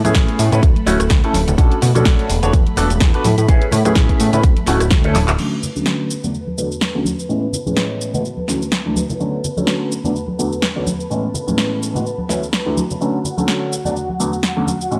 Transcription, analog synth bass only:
0.05 A2
0.15 A1
0.39 A2
0.52 A2
0.63 D2
0.87 D1
1.00 D1
1.10 D2
1.34 D1
1.47 D1
1.58 B1
1.82 B2
1.95 B2
2.06 B1
2.30 E1
2.43 E1
2.53 E2
2.77 E1
2.90 E1
3.01 E2
3.25 A2
3.38 A2
3.48 A1
3.72 A2
3.85 A2
3.96 A1
4.20 A2
4.33 A2
4.43 D2
4.68 D1
4.81 D1
4.91 D2
5.15 D1
5.28 D1

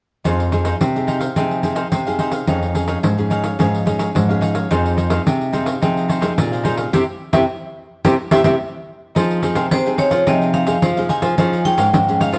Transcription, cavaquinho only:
0.24 D#4 G#4 C5 F5
0.52 D#4 G#4 C5 F5
0.65 D#4 G#4 C5 F5
1.07 D#4 G#4 C5 F5
1.20 G#4 C5 F5
1.36 D#4 G#4 C5 F5
1.62 D#4 G#4 C5 F5
1.75 D#4 G#4 C5 F5
2.06 G#4 C5 F5
2.19 D#4 G#4 C5 F5
2.31 G#4 C5 F5
2.47 D#4 G#4 C#5 F5
2.75 D#4 G#4 C#5 F5
2.88 D#4 G#4 C#5 F5
3.30 D#4 G#4 C#5 F5
3.43 G#4 C#5 F5
3.59 D#4 G#4 C#5 F5
3.86 D#4 G#4 C#5 F5
3.99 D#4 G#4 C#5 F5
4.29 G#4 C#5 F5
4.41 D#4 G#4 C#5 F5
4.55 G#4 C#5 F5
4.71 D#4 G#4 C5 F5
4.97 D#4 G#4 C5 F5
5.10 D#4 G#4 C5 F5
5.53 D#4 G#4 C5 F5
5.65 G#4 C5 F5
5.81 D#4 G#4 C5 F5
6.08 D#4 G#4 C5 F5
6.21 D#4 G#4 C5 F5
6.52 G#4 C5 F5
6.64 D#4 G#4 C5 F5
6.77 G#4 C5 F5
6.93 G4 C5 E5
7.33 G4 C5 E5
8.05 G4 C5 E5
8.32 G4 C5 E5
8.44 G4 C5 E5
9.15 D#4 G#4 C5 F5
9.42 D#4 G#4 C5 F5
9.55 D#4 G#4 C5 F5
9.98 D#4 G#4 C5 F5
10.10 G#4 C5 F5
10.27 D#4 G#4 C5 F5
10.53 D#4 G#4 C5 F5
10.66 D#4 G#4 C5 F5
10.97 G#4 C5 F5
11.09 D#4 G#4 C5 F5
11.22 G#4 C5 F5
11.38 D#4 G#4 C#5 F5
11.64 D#4 G#4 C#5 F5
11.78 D#4 G#4 C#5 F5
12.20 D#4 G#4 C#5 F5
12.33 G#4 C#5 F5

